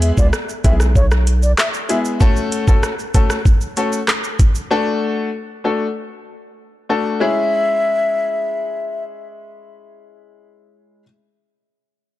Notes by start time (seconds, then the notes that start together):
Already playing: E2 G#3 B3 E4 G#4
0.02 E5, closed hi-hat, shaker
0.17 C#2 D5, kick, shaker
0.33 cross-stick, shaker
0.49 shaker
0.64 B1 G#3 B3 E4 G#4 E5, kick, closed hi-hat, shaker
0.80 cross-stick, shaker
0.95 C#5, kick, shaker
1.11 cross-stick, shaker
1.27 closed hi-hat, shaker
1.43 D5, shaker
1.58 E5, cross-stick, clap, shaker
1.74 shaker
1.89 G#3 B3 E4 G#4 E5, closed hi-hat, shaker
2.05 shaker
2.20 A3 C#4 F#4 A4, kick, shaker
2.37 shaker
2.52 closed hi-hat, shaker
2.67 A3 C#4 F#4 A4, kick, shaker
2.83 cross-stick, shaker
2.99 shaker
3.14 A3 C#4 F#4 A4, kick, closed hi-hat, shaker
3.30 cross-stick, shaker
3.45 kick, shaker
3.61 shaker
3.77 A3 C#4 F#4 A4, closed hi-hat, shaker
3.93 shaker
4.08 cross-stick, clap, shaker
4.24 shaker
4.39 kick, closed hi-hat, shaker
4.55 shaker
4.71 A3 D4 F#4 A4
5.64 A3 D4 F#4 A4
6.89 A3 D4 F#4 A4
7.20 G#3 C#4 E4 G#4 E5